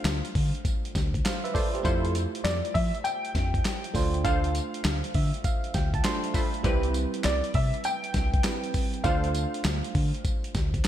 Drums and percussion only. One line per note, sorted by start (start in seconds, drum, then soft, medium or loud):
0.05 snare loud
0.05 clap loud
0.05 closed hi-hat medium
0.05 tambourine loud
0.25 closed hi-hat medium
0.35 kick loud
0.35 open hi-hat medium
0.55 closed hi-hat soft
0.65 kick loud
0.65 closed hi-hat medium
0.65 tambourine medium
0.85 closed hi-hat medium
0.95 kick medium
0.95 snare medium
0.95 closed hi-hat medium
0.95 tambourine medium
1.14 kick medium
1.14 closed hi-hat medium
1.25 snare loud
1.25 clap loud
1.25 closed hi-hat medium
1.25 tambourine loud
1.45 closed hi-hat medium
1.55 kick medium
1.55 open hi-hat medium
1.55 tambourine medium
1.75 closed hi-hat medium
1.85 kick loud
1.85 closed hi-hat medium
1.85 tambourine medium
2.05 closed hi-hat medium
2.15 closed hi-hat medium
2.15 tambourine medium
2.35 closed hi-hat medium
2.45 snare loud
2.45 clap loud
2.45 closed hi-hat medium
2.45 tambourine loud
2.65 closed hi-hat medium
2.75 kick loud
2.75 open hi-hat medium
2.95 closed hi-hat medium
3.05 closed hi-hat medium
3.05 tambourine medium
3.25 closed hi-hat soft
3.35 kick medium
3.35 snare medium
3.35 closed hi-hat medium
3.35 tambourine medium
3.54 kick medium
3.54 closed hi-hat medium
3.65 snare loud
3.65 clap medium
3.65 closed hi-hat medium
3.65 tambourine loud
3.84 closed hi-hat medium
3.95 kick medium
3.95 open hi-hat medium
3.95 tambourine medium
4.14 closed hi-hat medium
4.25 kick loud
4.25 closed hi-hat medium
4.25 tambourine medium
4.44 closed hi-hat medium
4.55 closed hi-hat medium
4.55 tambourine medium
4.74 closed hi-hat medium
4.84 snare loud
4.84 clap medium
4.84 closed hi-hat medium
4.84 tambourine loud
5.04 closed hi-hat medium
5.14 kick loud
5.14 open hi-hat medium
5.34 closed hi-hat medium
5.44 kick loud
5.44 closed hi-hat medium
5.44 tambourine medium
5.64 closed hi-hat soft
5.74 kick medium
5.74 snare medium
5.74 closed hi-hat medium
5.74 tambourine medium
5.94 kick medium
5.94 closed hi-hat medium
6.04 snare loud
6.04 clap loud
6.04 closed hi-hat medium
6.04 tambourine loud
6.24 closed hi-hat medium
6.34 kick loud
6.34 open hi-hat medium
6.34 tambourine medium
6.54 closed hi-hat medium
6.64 kick loud
6.64 closed hi-hat medium
6.64 tambourine medium
6.83 closed hi-hat medium
6.94 closed hi-hat medium
6.94 tambourine medium
7.14 closed hi-hat medium
7.24 snare loud
7.24 clap loud
7.24 closed hi-hat medium
7.24 tambourine loud
7.44 closed hi-hat medium
7.54 kick loud
7.54 open hi-hat medium
7.74 closed hi-hat soft
7.84 closed hi-hat medium
7.84 tambourine medium
8.04 closed hi-hat medium
8.14 kick medium
8.14 snare medium
8.14 closed hi-hat medium
8.14 tambourine medium
8.34 kick medium
8.34 closed hi-hat medium
8.44 snare loud
8.44 clap loud
8.44 closed hi-hat medium
8.44 tambourine loud
8.64 closed hi-hat medium
8.74 kick medium
8.74 open hi-hat medium
8.74 tambourine medium
8.94 closed hi-hat medium
9.04 kick loud
9.04 closed hi-hat medium
9.04 tambourine medium
9.24 closed hi-hat medium
9.34 closed hi-hat medium
9.34 tambourine medium
9.54 closed hi-hat medium
9.64 snare loud
9.64 clap loud
9.64 closed hi-hat medium
9.64 tambourine loud
9.84 closed hi-hat medium
9.95 kick loud
9.95 open hi-hat medium
10.15 closed hi-hat soft
10.25 kick loud
10.25 closed hi-hat medium
10.25 tambourine medium
10.44 closed hi-hat soft
10.55 kick loud
10.55 snare medium
10.55 closed hi-hat medium
10.55 tambourine medium
10.74 kick medium
10.74 closed hi-hat medium
10.84 snare loud
10.84 clap loud
10.84 closed hi-hat medium
10.84 tambourine loud